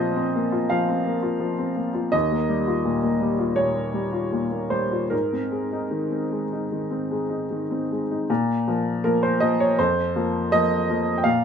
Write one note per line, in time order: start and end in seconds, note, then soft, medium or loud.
0.00 0.65 A#2 medium
0.00 0.27 F3 soft
0.00 0.36 A#3 soft
0.00 0.16 C4 soft
0.00 0.52 F4 soft
0.00 2.15 C5 medium
0.00 0.69 D#5 medium
0.16 0.45 C4 soft
0.36 0.63 A#3 soft
0.52 0.80 F4 soft
0.70 0.98 F3 soft
0.70 1.77 F5 medium
0.89 1.16 C4 soft
1.06 1.34 A#3 soft
1.23 1.51 F4 soft
1.40 1.69 F3 soft
1.59 1.88 C4 soft
1.76 2.05 A#3 soft
1.94 2.13 F4 soft
2.12 3.54 D#2 medium
2.12 3.58 D#5 medium
2.31 2.61 A#3 soft
2.49 2.78 G3 soft
2.68 2.97 F4 soft
2.85 3.14 A#2 soft
3.03 3.32 A#3 soft
3.21 3.51 G3 soft
3.39 3.69 F4 soft
3.56 3.87 A#2 soft
3.56 4.71 C#5 medium
3.76 4.06 A#3 soft
3.94 4.25 G3 soft
4.13 4.44 F4 soft
4.33 4.64 A#2 soft
4.52 4.83 A#3 soft
4.70 5.03 G3 soft
4.70 5.11 C5 medium
4.92 5.12 F4 soft
5.10 6.68 G#2 soft
5.10 7.89 A#4 medium
5.33 5.65 C4 soft
5.52 5.84 G#3 soft
5.72 6.05 D#4 soft
5.91 6.24 D#3 soft
6.11 6.44 C4 soft
6.32 6.64 G#3 soft
6.52 6.84 D#4 soft
6.72 7.03 D#3 soft
6.91 7.23 C4 soft
7.11 7.43 G#3 soft
7.30 7.62 D#4 soft
7.51 7.82 D#3 soft
7.71 8.02 C4 soft
7.92 8.22 G#3 soft
8.11 8.30 D#4 soft
8.30 8.66 A#2 medium
8.68 9.01 F3 soft
8.68 9.01 A#3 soft
9.04 9.38 F3 soft
9.04 9.38 A#3 soft
9.04 9.23 A#4 medium
9.23 9.41 C5 medium
9.40 9.74 F3 soft
9.40 9.75 A#3 soft
9.40 9.59 D#5 medium
9.60 9.78 C#5 medium
9.79 10.14 F2 medium
9.79 10.51 C5 medium
10.16 10.48 F3 soft
10.16 10.48 A#3 soft
10.52 10.85 F3 soft
10.52 10.85 A#3 soft
10.52 11.18 D#5 medium
10.89 11.22 F3 soft
10.89 11.22 A#3 soft
11.18 11.25 G5 medium
11.24 11.45 A#2 medium
11.24 11.45 F5 medium